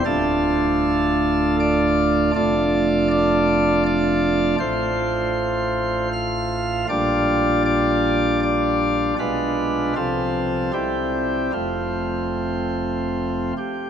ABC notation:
X:1
M:3/4
L:1/8
Q:1/4=78
K:Ddor
V:1 name="Pipe organ"
A4 d2 | d2 d2 d2 | [K:F] c4 f2 | d2 d2 d2 |
=B2 A2 G2 | F4- F G |]
V:2 name="Pipe organ" clef=bass
[D,,,D,,A,DF]6 | [F,,,F,,A,DF]6 | [K:F] [A,,,A,,A,F]6 | [B,,,B,,G,DF]6 |
[=B,,,=B,,^G,DF]2 [C,,C,F,CF]2 [C,,C,=G,CE]2 | [F,,,F,,A,C]4- [F,,,F,,A,C] z |]